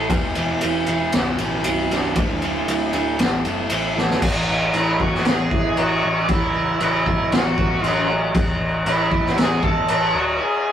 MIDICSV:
0, 0, Header, 1, 6, 480
1, 0, Start_track
1, 0, Tempo, 515021
1, 94, Time_signature, 4, 2, 24, 8
1, 9992, End_track
2, 0, Start_track
2, 0, Title_t, "Lead electric guitar"
2, 0, Program_c, 0, 29
2, 4426, Note_on_c, 0, 64, 66
2, 4446, Note_on_c, 0, 76, 86
2, 4648, Note_off_c, 0, 64, 0
2, 4665, Note_on_c, 0, 66, 66
2, 4681, Note_off_c, 0, 76, 0
2, 4686, Note_on_c, 0, 78, 77
2, 4887, Note_off_c, 0, 66, 0
2, 4894, Note_on_c, 0, 68, 72
2, 4916, Note_on_c, 0, 80, 106
2, 4921, Note_off_c, 0, 78, 0
2, 5345, Note_off_c, 0, 68, 0
2, 5381, Note_on_c, 0, 66, 70
2, 5390, Note_on_c, 0, 78, 81
2, 5404, Note_off_c, 0, 80, 0
2, 5769, Note_off_c, 0, 66, 0
2, 5797, Note_on_c, 0, 74, 69
2, 5812, Note_off_c, 0, 78, 0
2, 5862, Note_off_c, 0, 74, 0
2, 5884, Note_on_c, 0, 76, 94
2, 5889, Note_on_c, 0, 64, 63
2, 6321, Note_off_c, 0, 64, 0
2, 6351, Note_off_c, 0, 76, 0
2, 6360, Note_on_c, 0, 76, 86
2, 6365, Note_on_c, 0, 64, 59
2, 6799, Note_off_c, 0, 64, 0
2, 6799, Note_off_c, 0, 76, 0
2, 6832, Note_on_c, 0, 78, 86
2, 6841, Note_on_c, 0, 66, 61
2, 7326, Note_off_c, 0, 78, 0
2, 7326, Note_on_c, 0, 76, 86
2, 7509, Note_off_c, 0, 76, 0
2, 7513, Note_off_c, 0, 66, 0
2, 8271, Note_on_c, 0, 64, 71
2, 8298, Note_on_c, 0, 76, 88
2, 8711, Note_off_c, 0, 64, 0
2, 8771, Note_off_c, 0, 76, 0
2, 8780, Note_on_c, 0, 68, 75
2, 8786, Note_on_c, 0, 80, 110
2, 8979, Note_off_c, 0, 68, 0
2, 8982, Note_on_c, 0, 69, 85
2, 8989, Note_off_c, 0, 80, 0
2, 8992, Note_on_c, 0, 81, 108
2, 9425, Note_off_c, 0, 69, 0
2, 9430, Note_off_c, 0, 81, 0
2, 9465, Note_on_c, 0, 66, 73
2, 9473, Note_on_c, 0, 78, 77
2, 9685, Note_off_c, 0, 66, 0
2, 9702, Note_off_c, 0, 78, 0
2, 9706, Note_on_c, 0, 80, 102
2, 9714, Note_on_c, 0, 68, 75
2, 9992, Note_off_c, 0, 68, 0
2, 9992, Note_off_c, 0, 80, 0
2, 9992, End_track
3, 0, Start_track
3, 0, Title_t, "Steel-string acoustic guitar"
3, 0, Program_c, 1, 25
3, 0, Note_on_c, 1, 45, 70
3, 0, Note_on_c, 1, 57, 62
3, 0, Note_on_c, 1, 61, 60
3, 0, Note_on_c, 1, 69, 63
3, 100, Note_off_c, 1, 61, 0
3, 101, Note_off_c, 1, 45, 0
3, 101, Note_off_c, 1, 69, 0
3, 102, Note_off_c, 1, 57, 0
3, 105, Note_on_c, 1, 40, 67
3, 340, Note_on_c, 1, 47, 62
3, 581, Note_on_c, 1, 52, 67
3, 820, Note_on_c, 1, 64, 66
3, 1059, Note_off_c, 1, 47, 0
3, 1059, Note_off_c, 1, 52, 0
3, 1059, Note_off_c, 1, 64, 0
3, 1062, Note_off_c, 1, 40, 0
3, 1065, Note_on_c, 1, 47, 68
3, 1301, Note_off_c, 1, 47, 0
3, 1301, Note_on_c, 1, 47, 64
3, 1541, Note_on_c, 1, 54, 57
3, 1790, Note_on_c, 1, 62, 67
3, 2020, Note_off_c, 1, 54, 0
3, 2021, Note_off_c, 1, 47, 0
3, 2024, Note_off_c, 1, 62, 0
3, 2025, Note_on_c, 1, 38, 60
3, 2265, Note_on_c, 1, 50, 62
3, 2503, Note_on_c, 1, 54, 67
3, 2735, Note_on_c, 1, 62, 65
3, 2974, Note_off_c, 1, 38, 0
3, 2977, Note_on_c, 1, 45, 68
3, 2978, Note_off_c, 1, 62, 0
3, 2982, Note_off_c, 1, 54, 0
3, 2983, Note_off_c, 1, 50, 0
3, 3218, Note_on_c, 1, 57, 56
3, 3460, Note_on_c, 1, 61, 60
3, 3695, Note_on_c, 1, 69, 61
3, 3928, Note_off_c, 1, 45, 0
3, 3938, Note_off_c, 1, 69, 0
3, 3939, Note_on_c, 1, 45, 68
3, 3941, Note_off_c, 1, 57, 0
3, 3941, Note_off_c, 1, 61, 0
3, 4172, Note_on_c, 1, 52, 61
3, 4409, Note_on_c, 1, 57, 69
3, 4656, Note_on_c, 1, 61, 60
3, 5137, Note_on_c, 1, 64, 67
3, 5370, Note_off_c, 1, 57, 0
3, 5374, Note_on_c, 1, 57, 57
3, 5621, Note_off_c, 1, 45, 0
3, 5625, Note_on_c, 1, 42, 61
3, 5652, Note_off_c, 1, 52, 0
3, 5652, Note_off_c, 1, 64, 0
3, 5850, Note_off_c, 1, 42, 0
3, 5861, Note_on_c, 1, 42, 69
3, 6108, Note_on_c, 1, 49, 61
3, 6336, Note_off_c, 1, 57, 0
3, 6340, Note_on_c, 1, 54, 67
3, 6585, Note_off_c, 1, 61, 0
3, 6589, Note_on_c, 1, 57, 69
3, 6832, Note_on_c, 1, 66, 85
3, 7061, Note_off_c, 1, 42, 0
3, 7070, Note_on_c, 1, 61, 72
3, 7294, Note_off_c, 1, 54, 0
3, 7304, Note_off_c, 1, 49, 0
3, 7305, Note_on_c, 1, 54, 70
3, 7540, Note_off_c, 1, 57, 0
3, 7552, Note_on_c, 1, 57, 67
3, 7783, Note_off_c, 1, 54, 0
3, 7785, Note_off_c, 1, 61, 0
3, 7786, Note_off_c, 1, 57, 0
3, 7786, Note_off_c, 1, 66, 0
3, 9992, End_track
4, 0, Start_track
4, 0, Title_t, "Overdriven electric guitar"
4, 0, Program_c, 2, 29
4, 91, Note_on_c, 2, 40, 85
4, 93, Note_on_c, 2, 47, 99
4, 100, Note_on_c, 2, 52, 92
4, 319, Note_off_c, 2, 47, 0
4, 323, Note_off_c, 2, 40, 0
4, 327, Note_off_c, 2, 52, 0
4, 330, Note_on_c, 2, 47, 92
4, 335, Note_on_c, 2, 40, 79
4, 338, Note_on_c, 2, 52, 89
4, 560, Note_off_c, 2, 40, 0
4, 568, Note_off_c, 2, 47, 0
4, 570, Note_off_c, 2, 52, 0
4, 571, Note_on_c, 2, 40, 71
4, 579, Note_on_c, 2, 47, 79
4, 581, Note_on_c, 2, 52, 81
4, 812, Note_off_c, 2, 47, 0
4, 813, Note_off_c, 2, 40, 0
4, 822, Note_off_c, 2, 52, 0
4, 823, Note_on_c, 2, 47, 80
4, 824, Note_on_c, 2, 40, 71
4, 833, Note_on_c, 2, 52, 87
4, 1042, Note_off_c, 2, 40, 0
4, 1046, Note_off_c, 2, 47, 0
4, 1046, Note_on_c, 2, 35, 73
4, 1050, Note_on_c, 2, 42, 90
4, 1051, Note_off_c, 2, 52, 0
4, 1060, Note_on_c, 2, 47, 101
4, 1279, Note_off_c, 2, 35, 0
4, 1281, Note_off_c, 2, 42, 0
4, 1289, Note_off_c, 2, 47, 0
4, 1290, Note_on_c, 2, 35, 77
4, 1292, Note_on_c, 2, 42, 82
4, 1300, Note_on_c, 2, 47, 80
4, 1528, Note_off_c, 2, 35, 0
4, 1535, Note_off_c, 2, 47, 0
4, 1537, Note_off_c, 2, 42, 0
4, 1539, Note_on_c, 2, 35, 86
4, 1546, Note_on_c, 2, 47, 89
4, 1548, Note_on_c, 2, 42, 76
4, 1770, Note_off_c, 2, 35, 0
4, 1780, Note_off_c, 2, 42, 0
4, 1781, Note_on_c, 2, 35, 75
4, 1787, Note_off_c, 2, 47, 0
4, 1791, Note_on_c, 2, 42, 73
4, 1798, Note_on_c, 2, 47, 88
4, 2006, Note_off_c, 2, 35, 0
4, 2011, Note_off_c, 2, 42, 0
4, 2014, Note_off_c, 2, 47, 0
4, 2023, Note_on_c, 2, 38, 83
4, 2026, Note_on_c, 2, 50, 88
4, 2027, Note_on_c, 2, 45, 90
4, 2255, Note_off_c, 2, 38, 0
4, 2265, Note_off_c, 2, 45, 0
4, 2267, Note_on_c, 2, 38, 80
4, 2268, Note_off_c, 2, 50, 0
4, 2276, Note_on_c, 2, 45, 88
4, 2279, Note_on_c, 2, 50, 95
4, 2478, Note_off_c, 2, 38, 0
4, 2489, Note_off_c, 2, 50, 0
4, 2489, Note_on_c, 2, 38, 68
4, 2490, Note_off_c, 2, 45, 0
4, 2500, Note_on_c, 2, 50, 75
4, 2501, Note_on_c, 2, 45, 75
4, 2726, Note_off_c, 2, 38, 0
4, 2729, Note_off_c, 2, 45, 0
4, 2730, Note_off_c, 2, 50, 0
4, 2737, Note_on_c, 2, 38, 70
4, 2740, Note_on_c, 2, 45, 70
4, 2741, Note_on_c, 2, 50, 81
4, 2964, Note_off_c, 2, 38, 0
4, 2964, Note_off_c, 2, 45, 0
4, 2967, Note_off_c, 2, 50, 0
4, 2975, Note_on_c, 2, 45, 83
4, 2976, Note_on_c, 2, 52, 87
4, 2982, Note_on_c, 2, 57, 99
4, 3205, Note_off_c, 2, 45, 0
4, 3212, Note_off_c, 2, 52, 0
4, 3216, Note_on_c, 2, 45, 68
4, 3219, Note_off_c, 2, 57, 0
4, 3223, Note_on_c, 2, 52, 80
4, 3231, Note_on_c, 2, 57, 91
4, 3461, Note_off_c, 2, 45, 0
4, 3465, Note_off_c, 2, 52, 0
4, 3467, Note_off_c, 2, 57, 0
4, 3472, Note_on_c, 2, 45, 81
4, 3477, Note_on_c, 2, 52, 84
4, 3478, Note_on_c, 2, 57, 83
4, 3696, Note_off_c, 2, 45, 0
4, 3698, Note_off_c, 2, 52, 0
4, 3698, Note_off_c, 2, 57, 0
4, 3707, Note_on_c, 2, 45, 73
4, 3709, Note_on_c, 2, 52, 71
4, 3710, Note_on_c, 2, 57, 75
4, 3930, Note_off_c, 2, 45, 0
4, 3931, Note_off_c, 2, 52, 0
4, 3932, Note_off_c, 2, 57, 0
4, 9992, End_track
5, 0, Start_track
5, 0, Title_t, "Picked electric bass"
5, 0, Program_c, 3, 34
5, 91, Note_on_c, 3, 28, 96
5, 309, Note_off_c, 3, 28, 0
5, 340, Note_on_c, 3, 28, 81
5, 554, Note_off_c, 3, 28, 0
5, 589, Note_on_c, 3, 28, 92
5, 799, Note_off_c, 3, 28, 0
5, 818, Note_on_c, 3, 28, 79
5, 1033, Note_off_c, 3, 28, 0
5, 1054, Note_on_c, 3, 23, 93
5, 1271, Note_off_c, 3, 23, 0
5, 1290, Note_on_c, 3, 33, 83
5, 1509, Note_off_c, 3, 33, 0
5, 1541, Note_on_c, 3, 23, 76
5, 1756, Note_off_c, 3, 23, 0
5, 1776, Note_on_c, 3, 23, 76
5, 1993, Note_off_c, 3, 23, 0
5, 2005, Note_on_c, 3, 26, 83
5, 2228, Note_off_c, 3, 26, 0
5, 2257, Note_on_c, 3, 26, 79
5, 2474, Note_off_c, 3, 26, 0
5, 2495, Note_on_c, 3, 26, 77
5, 2713, Note_off_c, 3, 26, 0
5, 2736, Note_on_c, 3, 26, 79
5, 2954, Note_off_c, 3, 26, 0
5, 2978, Note_on_c, 3, 33, 86
5, 3195, Note_off_c, 3, 33, 0
5, 3209, Note_on_c, 3, 30, 86
5, 3430, Note_off_c, 3, 30, 0
5, 3462, Note_on_c, 3, 33, 84
5, 3678, Note_off_c, 3, 33, 0
5, 3700, Note_on_c, 3, 33, 79
5, 3917, Note_off_c, 3, 33, 0
5, 3933, Note_on_c, 3, 33, 82
5, 4159, Note_off_c, 3, 33, 0
5, 4186, Note_on_c, 3, 33, 77
5, 4406, Note_off_c, 3, 33, 0
5, 4412, Note_on_c, 3, 33, 85
5, 4639, Note_off_c, 3, 33, 0
5, 4662, Note_on_c, 3, 33, 71
5, 4884, Note_off_c, 3, 33, 0
5, 4906, Note_on_c, 3, 33, 92
5, 5126, Note_off_c, 3, 33, 0
5, 5136, Note_on_c, 3, 33, 91
5, 5361, Note_off_c, 3, 33, 0
5, 5388, Note_on_c, 3, 33, 82
5, 5607, Note_off_c, 3, 33, 0
5, 5632, Note_on_c, 3, 33, 83
5, 5849, Note_off_c, 3, 33, 0
5, 5856, Note_on_c, 3, 33, 88
5, 6302, Note_off_c, 3, 33, 0
5, 6346, Note_on_c, 3, 33, 83
5, 6566, Note_off_c, 3, 33, 0
5, 6585, Note_on_c, 3, 33, 78
5, 6805, Note_off_c, 3, 33, 0
5, 6818, Note_on_c, 3, 33, 101
5, 7041, Note_off_c, 3, 33, 0
5, 7064, Note_on_c, 3, 33, 86
5, 7284, Note_off_c, 3, 33, 0
5, 7295, Note_on_c, 3, 33, 89
5, 7740, Note_off_c, 3, 33, 0
5, 7785, Note_on_c, 3, 33, 89
5, 8004, Note_off_c, 3, 33, 0
5, 8009, Note_on_c, 3, 33, 86
5, 8235, Note_off_c, 3, 33, 0
5, 8258, Note_on_c, 3, 33, 93
5, 8480, Note_off_c, 3, 33, 0
5, 8490, Note_on_c, 3, 33, 83
5, 8715, Note_off_c, 3, 33, 0
5, 8740, Note_on_c, 3, 33, 96
5, 8960, Note_off_c, 3, 33, 0
5, 8977, Note_on_c, 3, 33, 90
5, 9198, Note_off_c, 3, 33, 0
5, 9219, Note_on_c, 3, 33, 88
5, 9439, Note_off_c, 3, 33, 0
5, 9456, Note_on_c, 3, 26, 81
5, 9677, Note_off_c, 3, 26, 0
5, 9992, End_track
6, 0, Start_track
6, 0, Title_t, "Drums"
6, 90, Note_on_c, 9, 36, 112
6, 93, Note_on_c, 9, 51, 86
6, 184, Note_off_c, 9, 36, 0
6, 186, Note_off_c, 9, 51, 0
6, 328, Note_on_c, 9, 51, 57
6, 421, Note_off_c, 9, 51, 0
6, 567, Note_on_c, 9, 51, 80
6, 660, Note_off_c, 9, 51, 0
6, 805, Note_on_c, 9, 51, 58
6, 898, Note_off_c, 9, 51, 0
6, 1046, Note_on_c, 9, 51, 78
6, 1057, Note_on_c, 9, 38, 97
6, 1139, Note_off_c, 9, 51, 0
6, 1150, Note_off_c, 9, 38, 0
6, 1290, Note_on_c, 9, 51, 68
6, 1383, Note_off_c, 9, 51, 0
6, 1528, Note_on_c, 9, 51, 90
6, 1621, Note_off_c, 9, 51, 0
6, 1782, Note_on_c, 9, 51, 56
6, 1793, Note_on_c, 9, 38, 27
6, 1875, Note_off_c, 9, 51, 0
6, 1886, Note_off_c, 9, 38, 0
6, 2008, Note_on_c, 9, 51, 78
6, 2012, Note_on_c, 9, 36, 106
6, 2102, Note_off_c, 9, 51, 0
6, 2105, Note_off_c, 9, 36, 0
6, 2254, Note_on_c, 9, 51, 49
6, 2347, Note_off_c, 9, 51, 0
6, 2499, Note_on_c, 9, 51, 69
6, 2592, Note_off_c, 9, 51, 0
6, 2728, Note_on_c, 9, 51, 52
6, 2822, Note_off_c, 9, 51, 0
6, 2972, Note_on_c, 9, 51, 70
6, 2983, Note_on_c, 9, 38, 103
6, 3065, Note_off_c, 9, 51, 0
6, 3076, Note_off_c, 9, 38, 0
6, 3213, Note_on_c, 9, 51, 61
6, 3306, Note_off_c, 9, 51, 0
6, 3444, Note_on_c, 9, 51, 83
6, 3537, Note_off_c, 9, 51, 0
6, 3707, Note_on_c, 9, 38, 50
6, 3800, Note_off_c, 9, 38, 0
6, 3822, Note_on_c, 9, 38, 72
6, 3915, Note_off_c, 9, 38, 0
6, 3933, Note_on_c, 9, 49, 114
6, 3933, Note_on_c, 9, 57, 60
6, 3935, Note_on_c, 9, 36, 113
6, 4026, Note_off_c, 9, 49, 0
6, 4026, Note_off_c, 9, 57, 0
6, 4028, Note_off_c, 9, 36, 0
6, 4411, Note_on_c, 9, 57, 55
6, 4505, Note_off_c, 9, 57, 0
6, 4658, Note_on_c, 9, 36, 74
6, 4752, Note_off_c, 9, 36, 0
6, 4793, Note_on_c, 9, 38, 29
6, 4886, Note_off_c, 9, 38, 0
6, 4893, Note_on_c, 9, 57, 59
6, 4904, Note_on_c, 9, 38, 107
6, 4986, Note_off_c, 9, 57, 0
6, 4997, Note_off_c, 9, 38, 0
6, 5139, Note_on_c, 9, 36, 85
6, 5232, Note_off_c, 9, 36, 0
6, 5376, Note_on_c, 9, 57, 58
6, 5470, Note_off_c, 9, 57, 0
6, 5857, Note_on_c, 9, 57, 58
6, 5861, Note_on_c, 9, 36, 114
6, 5950, Note_off_c, 9, 57, 0
6, 5954, Note_off_c, 9, 36, 0
6, 6340, Note_on_c, 9, 57, 55
6, 6433, Note_off_c, 9, 57, 0
6, 6583, Note_on_c, 9, 36, 70
6, 6676, Note_off_c, 9, 36, 0
6, 6823, Note_on_c, 9, 57, 57
6, 6834, Note_on_c, 9, 38, 109
6, 6916, Note_off_c, 9, 57, 0
6, 6927, Note_off_c, 9, 38, 0
6, 7063, Note_on_c, 9, 36, 87
6, 7156, Note_off_c, 9, 36, 0
6, 7304, Note_on_c, 9, 57, 61
6, 7398, Note_off_c, 9, 57, 0
6, 7779, Note_on_c, 9, 36, 117
6, 7779, Note_on_c, 9, 57, 61
6, 7872, Note_off_c, 9, 57, 0
6, 7873, Note_off_c, 9, 36, 0
6, 8257, Note_on_c, 9, 57, 57
6, 8351, Note_off_c, 9, 57, 0
6, 8495, Note_on_c, 9, 36, 78
6, 8588, Note_off_c, 9, 36, 0
6, 8627, Note_on_c, 9, 38, 32
6, 8720, Note_off_c, 9, 38, 0
6, 8739, Note_on_c, 9, 57, 63
6, 8750, Note_on_c, 9, 38, 106
6, 8832, Note_off_c, 9, 57, 0
6, 8843, Note_off_c, 9, 38, 0
6, 8975, Note_on_c, 9, 36, 91
6, 9068, Note_off_c, 9, 36, 0
6, 9211, Note_on_c, 9, 57, 70
6, 9304, Note_off_c, 9, 57, 0
6, 9992, End_track
0, 0, End_of_file